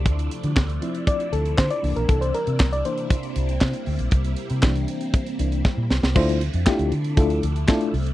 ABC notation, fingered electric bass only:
X:1
M:4/4
L:1/16
Q:1/4=118
K:Dm
V:1 name="Fingered electric bass" clef=bass
D,,2 z D, D,,2 z4 D,,2 D, z C,, B,,, | C,,2 z C, C,,2 z4 C,,2 C, z D,, B,,, | C,,2 z C, C,,2 z4 C,,2 z B,, C,, C,, | D,,3 F,, z D,, D,2 D,,2 D,,2 z2 C,,2 |]